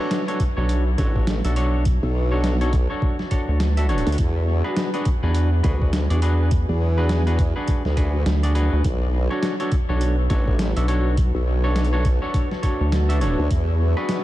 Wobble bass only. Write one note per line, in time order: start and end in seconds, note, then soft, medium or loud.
0.98 1.42 A1 loud
2.03 2.87 B1 loud
4.07 4.17 D2 loud
4.19 4.62 E2 loud
5.64 6.08 D2 medium
6.69 7.54 E2 medium
7.85 8.24 D2 medium
8.85 9.28 B1 loud
10.30 10.74 A1 loud
11.35 12.19 B1 loud
13.39 13.49 D2 loud
13.51 13.94 E2 loud